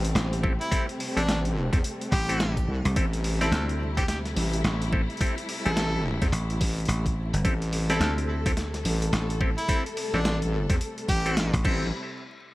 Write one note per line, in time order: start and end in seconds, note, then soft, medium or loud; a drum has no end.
0.00 0.14 A1 medium
0.00 11.61 C3 medium
0.00 11.61 G3 medium
0.00 11.61 A3 medium
0.00 2.95 C4 medium
0.05 closed hi-hat medium
0.15 0.58 A1 medium
0.15 snare loud
0.15 closed hi-hat medium
0.33 closed hi-hat soft
0.43 0.53 C4 medium
0.43 0.53 E4 medium
0.43 0.53 G4 medium
0.43 0.53 A4 loud
0.43 kick loud
0.61 0.84 E4 medium
0.61 closed hi-hat medium
0.71 0.86 C4 medium
0.71 0.86 E4 medium
0.71 0.86 G4 medium
0.71 0.86 A4 loud
0.71 kick loud
0.71 closed hi-hat medium
0.89 closed hi-hat soft
1.00 open hi-hat medium
1.16 1.70 A1 medium
1.16 1.23 C4 medium
1.16 1.40 D4 medium
1.16 1.23 E4 medium
1.16 1.23 G4 medium
1.16 1.23 A4 medium
1.16 snare medium
1.16 closed hi-hat medium
1.29 snare loud
1.29 closed hi-hat medium
1.45 closed hi-hat soft
1.73 1.82 E2 loud
1.73 1.79 C4 medium
1.73 1.79 E4 medium
1.73 1.79 G4 medium
1.73 1.79 A4 medium
1.73 kick loud
1.73 snare soft
1.73 closed hi-hat medium
1.84 closed hi-hat medium
2.01 closed hi-hat soft
2.12 2.66 A1 loud
2.12 2.57 G4 loud
2.12 kick loud
2.12 open hi-hat medium
2.29 2.38 C4 loud
2.29 2.38 E4 medium
2.29 2.39 G4 medium
2.29 2.38 A4 loud
2.29 closed hi-hat medium
2.40 snare loud
2.40 closed hi-hat medium
2.57 kick medium
2.57 closed hi-hat soft
2.68 2.82 C2 loud
2.85 2.94 C2 loud
2.85 closed hi-hat medium
2.96 3.50 A1 loud
2.96 3.05 C4 medium
2.96 7.44 E4 medium
2.96 3.05 E4 medium
2.96 3.05 G4 medium
2.96 3.05 A4 loud
2.96 kick loud
2.96 closed hi-hat medium
3.13 closed hi-hat soft
3.24 open hi-hat medium
3.41 3.93 C4 loud
3.41 3.93 E4 medium
3.41 3.48 E4 medium
3.41 3.93 G4 medium
3.41 3.64 A4 medium
3.41 3.93 D5 loud
3.41 snare medium
3.41 closed hi-hat medium
3.52 4.34 D2 loud
3.52 snare loud
3.52 closed hi-hat medium
3.69 closed hi-hat soft
3.97 4.03 C4 loud
3.97 4.03 E4 medium
3.97 4.04 G4 medium
3.97 4.03 G4 medium
3.97 4.03 A4 loud
3.97 kick loud
3.97 snare soft
3.97 closed hi-hat medium
4.08 4.19 G4 medium
4.08 snare medium
4.08 closed hi-hat medium
4.25 snare soft
4.25 closed hi-hat soft
4.36 4.63 A1 loud
4.36 open hi-hat medium
4.53 closed hi-hat medium
4.64 5.06 A1 loud
4.64 snare loud
4.64 closed hi-hat medium
4.82 closed hi-hat soft
4.92 5.02 C4 medium
4.92 5.01 E4 medium
4.92 5.02 G4 medium
4.92 5.02 A4 loud
4.92 kick loud
5.10 closed hi-hat soft
5.17 5.35 C4 medium
5.17 5.35 E4 medium
5.17 5.35 G4 medium
5.17 5.35 A4 loud
5.17 kick loud
5.17 closed hi-hat soft
5.21 closed hi-hat medium
5.27 closed hi-hat soft
5.38 closed hi-hat soft
5.49 open hi-hat medium
5.66 6.19 A1 loud
5.66 5.71 C4 medium
5.66 5.71 E4 medium
5.66 5.71 G4 medium
5.66 5.71 A4 medium
5.66 6.05 A4 medium
5.66 snare medium
5.66 closed hi-hat medium
5.77 snare loud
5.77 closed hi-hat medium
6.22 6.31 E2 loud
6.22 6.28 C4 medium
6.22 6.28 E4 medium
6.22 6.28 G4 medium
6.22 6.28 A4 medium
6.22 kick loud
6.22 snare soft
6.22 closed hi-hat medium
6.32 6.59 A1 loud
6.32 closed hi-hat medium
6.50 closed hi-hat soft
6.61 6.87 A1 medium
6.61 kick loud
6.61 open hi-hat medium
6.78 closed hi-hat soft
6.80 closed hi-hat soft
6.85 7.31 A1 loud
6.85 closed hi-hat soft
6.89 closed hi-hat medium
7.06 kick medium
7.06 closed hi-hat soft
7.33 7.43 G1 loud
7.33 closed hi-hat medium
7.45 7.99 A1 loud
7.45 7.54 C4 medium
7.45 7.54 E4 medium
7.45 7.54 G4 medium
7.45 11.61 A4 medium
7.45 7.54 A4 loud
7.45 kick loud
7.45 closed hi-hat medium
7.62 closed hi-hat soft
7.73 open hi-hat medium
7.90 8.42 C4 loud
7.90 8.42 E4 medium
7.90 7.96 E4 medium
7.90 8.42 G4 medium
7.90 8.13 A4 medium
7.90 8.42 D5 loud
7.90 snare medium
7.90 closed hi-hat medium
8.00 8.83 D2 loud
8.00 snare loud
8.00 closed hi-hat medium
8.18 closed hi-hat soft
8.46 8.52 C4 loud
8.46 8.52 E4 medium
8.46 8.52 G4 medium
8.46 8.52 A4 loud
8.46 kick loud
8.46 snare soft
8.46 closed hi-hat medium
8.57 snare medium
8.57 closed hi-hat medium
8.74 snare soft
8.74 closed hi-hat soft
8.85 9.11 A1 loud
8.85 open hi-hat medium
9.02 closed hi-hat medium
9.13 9.55 A1 loud
9.13 snare loud
9.13 closed hi-hat medium
9.30 closed hi-hat soft
9.41 9.50 C4 medium
9.41 9.50 E4 medium
9.41 9.50 G4 medium
9.41 9.50 A4 loud
9.41 kick loud
9.58 9.81 E4 loud
9.58 closed hi-hat medium
9.69 9.84 C4 loud
9.69 9.83 E4 medium
9.69 9.83 G4 medium
9.69 9.83 A4 loud
9.69 kick loud
9.69 closed hi-hat medium
9.86 closed hi-hat soft
9.97 open hi-hat medium
10.13 10.67 A1 loud
10.13 10.20 C4 medium
10.13 10.37 D4 medium
10.13 10.20 E4 medium
10.13 10.20 G4 medium
10.13 10.20 A4 medium
10.13 snare medium
10.25 snare loud
10.25 closed hi-hat medium
10.42 closed hi-hat soft
10.70 10.79 E2 loud
10.70 10.76 C4 medium
10.70 10.76 E4 medium
10.70 10.76 G4 medium
10.70 10.76 A4 medium
10.70 kick loud
10.70 snare soft
10.70 closed hi-hat medium
10.81 closed hi-hat medium
10.98 closed hi-hat soft
11.09 11.51 A1 medium
11.09 11.54 G4 loud
11.09 kick loud
11.09 open hi-hat medium
11.26 11.35 C4 loud
11.26 11.35 E4 medium
11.26 11.35 G4 medium
11.26 11.35 A4 loud
11.26 closed hi-hat medium
11.37 snare loud
11.37 closed hi-hat medium
11.53 11.63 A1 loud
11.53 kick medium
11.53 closed hi-hat soft
11.64 11.91 A1 loud
11.64 11.91 C3 medium
11.64 11.91 G3 medium
11.64 11.91 A3 medium
11.64 11.87 C4 medium
11.64 11.91 E4 medium
11.64 11.87 E4 medium
11.64 11.87 G4 medium
11.64 11.87 A4 medium
11.64 kick loud
11.64 crash medium